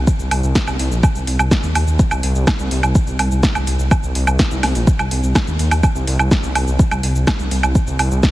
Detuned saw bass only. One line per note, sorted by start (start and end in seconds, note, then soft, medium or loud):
0.19 0.29 C2 medium
0.31 0.41 C2 medium
0.43 0.53 C2 medium
0.67 0.77 C2 medium
0.79 0.89 C2 medium
0.91 1.01 A#1 medium
1.15 1.25 C2 medium
1.27 1.37 C2 medium
1.39 1.49 C2 medium
1.63 1.73 D#2 medium
1.75 1.85 D#2 loud
1.87 1.97 D#2 loud
2.11 2.21 C2 medium
2.23 2.33 C2 loud
2.35 2.45 C2 medium
2.59 2.69 C2 medium
2.71 2.81 C2 medium
2.83 2.93 C2 medium
3.07 3.17 C2 medium
3.19 3.29 C2 loud
3.31 3.41 C2 medium
3.55 3.65 C2 medium
3.67 3.77 C2 loud
3.79 3.89 C2 loud
4.03 4.13 C2 medium
4.15 4.25 C2 loud
4.27 4.37 C2 medium
4.51 4.61 C2 medium
4.63 4.73 C2 medium
4.75 4.85 A#1 medium
4.99 5.09 C2 medium
5.11 5.21 C2 medium
5.23 5.33 C2 medium
5.47 5.57 D#2 medium
5.59 5.69 D#2 loud
5.71 5.81 D#2 medium
5.95 6.05 C2 medium
6.07 6.17 C2 loud
6.19 6.29 C2 medium
6.43 6.53 C2 medium
6.55 6.65 C2 medium
6.67 6.77 C2 medium
6.91 7.01 C2 medium
7.03 7.13 C2 loud
7.15 7.25 C2 medium
7.39 7.49 C2 medium
7.51 7.61 C2 loud
7.63 7.73 C2 medium
7.87 7.97 C2 medium
7.99 8.09 C2 loud
8.11 8.21 C2 medium